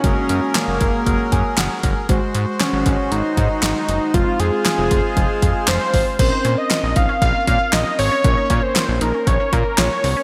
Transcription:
<<
  \new Staff \with { instrumentName = "Analog synth lead" } { \time 4/4 \key bes \minor \tempo 4 = 117 des'4 bes2 r4 | r4 des'4 ees'4 ees'4 | f'8 aes'2~ aes'8 c''4 | c''8. ees''8. f''8 f''8 f''8 ees''8 des''8~ |
des''8. c''8. bes'8 des''8 bes'8 des''4 | }
  \new Staff \with { instrumentName = "Accordion" } { \time 4/4 \key bes \minor << { <ges aes'>1 | c''1~ | c''1 | r1 |
r1 | } \\ { <des' bes'>1 | <aes ges'>1 | <aes f'>1 | r1 |
r1 | } >> }
  \new Staff \with { instrumentName = "Synth arpeggio sound" } { \time 4/4 \key bes \minor r1 | r1 | r1 | r16 ees'16 des'8 f'8 ees'16 des'8 bes16 des'8 f'8 c'16 des'16 |
r16 ees'16 des'8 f'8 ees'16 des'8 bes16 des'8 f'8 c'16 des'16 | }
  \new Staff \with { instrumentName = "Tine electric piano" } { \time 4/4 \key bes \minor << { r2 r8 aes''8 ges''4 | r1 | r1 | r1 |
r1 | } \\ { <aes bes ges'>1 | <aes ges' c''>1 | <aes c' f'>1 | <c' des' bes'>1 |
<bes des' bes'>1 | } >> }
  \new Staff \with { instrumentName = "Analog synth bass" } { \clef bass \time 4/4 \key bes \minor ges,,16 r16 ges,16 r8 ges,,16 ges,,16 r16 ges,,16 r16 ges,16 r16 ges,,16 r16 ges,,16 r16 | aes,,16 r16 aes,16 r8 aes,,16 aes,,16 r16 aes,,16 r16 aes,16 r16 aes,,16 r16 ges,,16 r16 | f,,16 r16 f,16 r8 f,,16 f,,16 r16 f,,16 r16 f,16 r16 f,,16 r16 aes,,16 r16 | bes,,16 r16 bes,16 r8 bes,,16 bes,,16 r16 bes,,16 r16 bes,16 r16 bes,,16 r16 aes,,16 r16 |
bes,,16 r16 bes,16 r8 bes,,16 bes,,16 r16 bes,,16 r16 bes,16 r16 bes,,16 r16 c,16 r16 | }
  \new DrumStaff \with { instrumentName = "Drums" } \drummode { \time 4/4 <hh bd>8 hh8 <hc hh sn>8 <hh bd>8 <hh bd>8 <hh bd>8 <hc hh sn>8 <hh bd>8 | <hh bd>8 hh8 <hc hh sn>8 <hh bd>8 hh8 <hh bd>8 <hc hh sn>8 hh8 | <hh bd>8 hh8 <hc hh sn>8 <hh bd>8 <hh bd>8 <hh bd>8 <hc hh sn>8 <hho bd>8 | <cymc hh bd>8 hh8 <hc hh sn>8 <hh bd>8 <hh bd>8 <hh bd>8 <hc hh sn>8 hho8 |
<hh bd>8 <hh bd>8 <hc hh sn>8 hh8 <hh bd>8 <hh bd>8 <hc hh sn>8 hho8 | }
>>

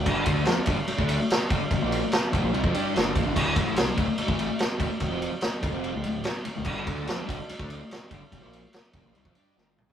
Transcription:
<<
  \new Staff \with { instrumentName = "Distorted electric guitar" } { \clef bass \time 4/4 \key g \major \tempo 4 = 145 <g, d g>8 <d a d'>8 <f c'>16 r16 <g, d>16 r8 <d a d'>8 r8. <g, d>16 r16 | <g, d>16 <bes, f bes>8 r8. <f, c>16 <bes, f>16 <c g>16 <f c'>16 <g d' g'>8 <g, d g>8 <bes, f>16 <g, d>16 | <d, a, d>8 <a, e a>8 <c g>16 r16 <d, a,>16 r8 <a, e a>8 r8. <d, a,>16 r16 | <d, a,>16 <f, c f>8 r8. <d, a,>16 <f, c f>8 <d, a,>16 <d, a,>8 r8. <d, a,>16 |
<g, d g>8 <d a d'>8 <f c'>16 r16 <g, d>16 r8 <d a d'>8 r8. <g, d>16 r16 | <g, d>16 <bes, f bes>8 r8. <f, c>16 <bes, f>16 <c g>16 <f c'>16 <g d' g'>8 <g, d g>8 <bes, f>16 <g, d>16 | }
  \new Staff \with { instrumentName = "Picked electric bass" } { \clef bass \time 4/4 \key g \major g,,8 d,8 f,16 r16 g,,16 r8 d,8 r8. g,,16 r16 | g,,16 bes,,8 r8. f,,16 bes,,16 c,16 f,16 g,8 g,,8 bes,,16 g,,16 | d,,8 a,,8 c,16 r16 d,,16 r8 a,,8 r8. d,,16 r16 | d,,16 f,,8 r8. d,,16 f,,8 d,,16 d,,8 r8. d,,16 |
g,,8 d,8 f,16 r16 g,,16 r8 d,8 r8. g,,16 r16 | g,,16 bes,,8 r8. f,,16 bes,,16 c,16 f,16 g,8 g,,8 bes,,16 g,,16 | }
  \new DrumStaff \with { instrumentName = "Drums" } \drummode { \time 4/4 <cymc bd>8 <bd cymr>8 <cymr sn>8 <bd cymr>8 cymr16 bd16 cymr8 <cymr sn>8 <bd cymr>8 | <bd cymr>8 cymr8 <cymr sn>8 <bd cymr>8 cymr16 bd16 cymr8 <cymr sn>8 <bd cymr>8 | <cymc bd>8 <bd cymr>8 <cymr sn>8 <bd cymr>8 cymr16 bd16 cymr8 <cymr sn>8 <bd cymr>8 | <bd cymr>8 cymr8 <cymr sn>8 <bd cymr>8 cymr8 cymr8 <cymr sn>8 cymr8 |
<cymc bd>8 <bd cymr>8 <cymr sn>8 <bd cymr>8 cymr16 bd16 cymr8 <cymr sn>8 <bd cymr>8 | <bd cymr>8 cymr8 <cymr sn>8 <bd cymr>8 cymr16 bd16 cymr8 sn8 toml16 tomfh16 | }
>>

